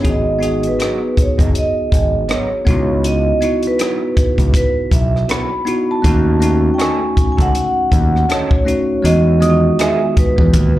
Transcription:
Already playing: B5
0.02 G#1 B3 D#4 F#4 G#4, kick, closed hi-hat
0.09 D#5
0.39 B3 D#4 F#4 G#4, closed hi-hat
0.63 closed hi-hat
0.67 B4
0.79 F#3 B3 D#4, cross-stick, closed hi-hat
1.17 muted fingered electric bass stroke, kick, closed hi-hat
1.22 C#5
1.38 F#1 F#3 B3 D#4, kick, closed hi-hat
1.55 D#5, closed hi-hat
1.92 G#1, kick, closed hi-hat
2.29 F#3 B3 D#4 C#5, cross-stick, closed hi-hat
2.65 C#2 B3 D#4 E4 F#4, kick, closed hi-hat
3.04 D#5, closed hi-hat
3.41 B3 D#4 E4 F#4, closed hi-hat
3.63 closed hi-hat
3.67 B4
3.79 F#3 B3 E4, cross-stick, closed hi-hat
4.17 muted fingered electric bass stroke, kick, closed hi-hat
4.38 C#2, kick, closed hi-hat
4.54 B4, kick, closed hi-hat
4.91 B1 E5, kick, closed hi-hat
5.16 cross-stick
5.29 F#3 B3 E4 B5, cross-stick, closed hi-hat
5.65 B3 D#4 E4 F#4, closed hi-hat
5.91 A5
6.02 D#2 A3 C#4 D#4 F#4, kick, closed hi-hat
6.40 A3 C#4 D#4 F#4, closed hi-hat
6.74 G5
6.78 C#4 D#4 A4 G#5 C#6, cross-stick, closed hi-hat
7.17 muted fingered electric bass stroke, kick, closed hi-hat
7.32 G#5
7.37 C#2 C#4 D#4 A4, kick, closed hi-hat
7.42 F#5
7.55 closed hi-hat
7.92 D#2, kick, closed hi-hat
8.16 cross-stick
8.29 C#4 D#4 A4 C#5, cross-stick, closed hi-hat
8.51 kick
8.65 A3 C#4 D#4 F#4, closed hi-hat
9.02 E2 G#3 B3 D#4 F#4 D#5, closed hi-hat
9.40 D#3 G#3 B3 F4 D#6, closed hi-hat
9.50 F#4
9.79 B3 D#4 G#4 E5, cross-stick, closed hi-hat
10.17 B4, muted fingered electric bass stroke, kick, closed hi-hat
10.38 E2, kick
10.54 D#2, kick, closed hi-hat

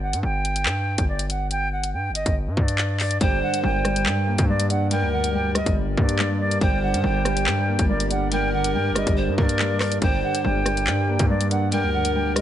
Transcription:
Already playing: G1
0.02 F#5
0.13 G2, closed hi-hat
0.23 G1 G5
0.45 closed hi-hat
0.56 closed hi-hat
0.66 G2, clap
0.98 G1, kick, closed hi-hat
1.08 D5
1.19 closed hi-hat
1.30 F#5, closed hi-hat
1.51 G5, closed hi-hat
1.72 F#5
1.84 closed hi-hat
1.93 G2 G5
2.10 G1
2.15 D#5, closed hi-hat
2.26 G1, kick, closed hi-hat
2.47 G2
2.57 G2 D5, kick
2.68 closed hi-hat
2.78 clap
3.00 D5, clap, open hi-hat
3.11 closed hi-hat
3.21 G1 G2 G3 G4 A#4 C5 D5 G5, kick, closed hi-hat
3.42 D3 F#5
3.54 closed hi-hat
3.63 G1 G2 G5
3.85 G3, cross-stick, closed hi-hat
3.96 closed hi-hat
4.06 G2, clap
4.27 A#3
4.38 G2, kick, closed hi-hat
4.49 G2 D5
4.60 closed hi-hat
4.70 D4 F#5, closed hi-hat
4.91 G2 A#4 G5, closed hi-hat
5.02 D2
5.12 D3 F#5
5.24 closed hi-hat
5.34 G2 G5
5.55 G3 D#5, cross-stick, closed hi-hat
5.66 G1, kick, closed hi-hat
5.76 G2
5.97 G2 A#3 D5, kick
6.09 closed hi-hat
6.19 G2, clap
6.40 D4 D5
6.51 closed hi-hat
6.61 G1 G2 C5 G5, kick, closed hi-hat
6.82 D3 F#5
6.94 G2, closed hi-hat
7.04 G1 G2 G5
7.25 G3, cross-stick, closed hi-hat
7.37 closed hi-hat
7.46 G2, clap
7.68 A#3
7.79 G1, kick, closed hi-hat
7.89 G2 D5
8.00 closed hi-hat
8.10 D4 F#5, closed hi-hat
8.31 G2 A#4 G5, closed hi-hat
8.53 D3 F#5
8.64 closed hi-hat
8.74 G2 G5
8.90 G1
8.95 G3 D#5, cross-stick, closed hi-hat
9.07 G1, kick, closed hi-hat
9.17 G2 C5
9.28 G2
9.38 G2 A#3 A#4 D5, kick
9.49 closed hi-hat
9.59 G2, clap
9.80 D4 D5, cross-stick, clap, open hi-hat
9.92 closed hi-hat
10.02 G1 G2 C5 G5, kick, closed hi-hat
10.23 D3 F#5
10.35 closed hi-hat
10.44 G1 G2 G5
10.66 G3, cross-stick, closed hi-hat
10.77 closed hi-hat
10.87 G2, clap
11.08 A#3
11.19 G2, kick, closed hi-hat
11.29 G2 D5
11.41 closed hi-hat
11.51 D4 F#5, closed hi-hat
11.72 G2 A#4 G5, closed hi-hat
11.83 D2
11.93 D3 F#5
12.05 closed hi-hat
12.14 G2 G5
12.36 G3 D#5, cross-stick, closed hi-hat

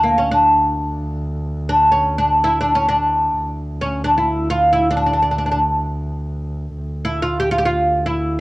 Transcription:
0.01 D2 A#3
0.18 C#4
0.31 D4
1.69 D4
1.92 C#4
2.18 D4
2.44 E4
2.61 D4
2.75 C#4
2.89 D4
3.38 D2
3.81 C#4
4.04 D4
4.18 E4
4.50 F4
4.73 E4
4.91 D4
4.97 D4
5.06 D4
5.13 D4
5.23 D4
5.31 D4
5.38 D4
5.46 D4
5.52 D4
6.77 D2
7.05 E4
7.22 F4
7.40 G4
7.51 F4
7.58 G4
7.65 F4
8.06 E4

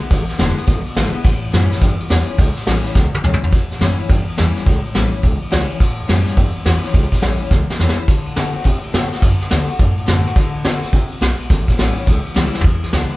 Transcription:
0.01 B3, ride
0.10 G#1 E2, kick, snare, ride
0.28 muted upright bass stroke, snare, ride
0.38 E1 D3 G#3 B3 E4, snare, ride
0.56 B3 E4, snare, ride
0.67 G#1 B2, kick, ride
0.85 muted upright bass stroke, ride
0.95 G#1 D3 G#3 B3 E4, snare, ride
1.13 B3 E4, muted upright bass stroke, ride
1.24 A1 A2, kick, snare, ride
1.42 E2, ride
1.52 F#2 E3 G3 C#4 E4, snare, ride
1.70 C#4 E4, snare, ride
1.81 E2 G2, kick, snare, ride
2.00 muted upright bass stroke, ride
2.09 E2 E3 G3 C#4 E4, snare, ride
2.28 C#4 E4, muted upright bass stroke, ride
2.38 C#2 A2, kick, ride
2.56 muted upright bass stroke, snare, ride
2.66 A1 E3 G3 C#4 E4, snare, ride
2.84 C#4 E4, muted upright bass stroke, snare, ride
2.95 C#2 E2, kick, snare
3.14 muted upright bass stroke, high tom
3.23 C#2 E3 G3 C#4 E4, mid tom
3.34 mid tom
3.41 C#4 E4, muted upright bass stroke, floor tom
3.51 A1 A2, kick, ride
3.70 E2, snare, ride
3.79 F#2 E3 G3 C#4 E4, snare, ride
3.98 C#4 E4, muted upright bass stroke, ride
4.09 E2 G2, kick, ride
4.27 muted upright bass stroke, ride
4.36 E2 E3 G3 C#4 E4, snare, ride
4.56 muted upright bass stroke, snare, ride
4.66 C#2 A2, kick, ride
4.84 muted upright bass stroke, ride
4.94 A1 E3 G3 C#4 E4, snare, ride
5.11 C#4 E4, muted upright bass stroke, ride
5.23 C#2 E2, kick, ride
5.42 muted upright bass stroke, ride
5.50 C#2 E3 G3 C#4 E4, snare, ride
5.69 C#4 E4, muted upright bass stroke, ride
5.80 A1 A2, kick, snare, ride
5.98 E2, ride
6.07 F#2 E3 G3 C#4 E4, snare, ride
6.27 snare, ride
6.37 E2 G2, kick, ride
6.55 muted upright bass stroke, ride
6.65 E2 E3 G3 C#4 E4, snare, ride
6.83 C#4 E4, muted upright bass stroke, snare, ride
6.93 C#2 A2, kick, ride
7.12 kick, snare, ride
7.21 A1 E3 G3 C#4 E4, snare, ride
7.40 C#4 E4, ride
7.51 C#2 E2, kick, snare
7.69 muted upright bass stroke, snare
7.79 E2 E3 G3 C#4 E4, snare
7.89 snare
7.97 C#4 E4, muted upright bass stroke
8.08 D2 D3, kick, ride
8.26 A2, ride
8.36 B2 D3 A3 C4 F#4, snare, ride
8.54 C4 F#4, muted upright bass stroke, ride
8.64 A2 C3, kick, ride
8.83 muted upright bass stroke, ride
8.92 A2 D3 A3 C4 F#4, snare, ride
9.11 C4 F#4, muted upright bass stroke, snare, ride
9.22 F#2 D3, kick, ride
9.40 muted upright bass stroke, snare, ride
9.50 D2 D3 A3 C4 F#4, snare, ride
9.68 C4 F#4, muted upright bass stroke, ride
9.79 F#2 A2, kick, ride
9.97 muted upright bass stroke, ride
10.06 F#2 D3 A3 C4 F#4, snare, ride
10.25 C4 F#4, muted upright bass stroke, snare, ride
10.36 D2 D3, kick, ride
10.54 A2, ride
10.64 B2 D3 A3 C4 F#4, snare, ride
10.82 C4 F#4, muted upright bass stroke, snare, ride
10.93 C3, kick, ride
11.11 muted upright bass stroke, ride
11.21 B1 B2, snare, ride
11.39 muted upright bass stroke, ride
11.50 A1 A2, kick, snare, ride
11.68 kick, snare, ride
11.78 A1 E3 G3 C#4 E4, snare, ride
11.96 C#4 E4, muted upright bass stroke, ride
12.07 C#2 E2, kick, ride
12.25 ride
12.34 C#2 E3 G3 C#4 E4, snare, ride
12.54 muted upright bass stroke, snare
12.61 E1 E2, kick, floor tom, ride
12.82 B1, snare, ride
12.92 C#2 D3 G#3 B3 E4, snare, ride
13.11 B3 E4, muted upright bass stroke, ride

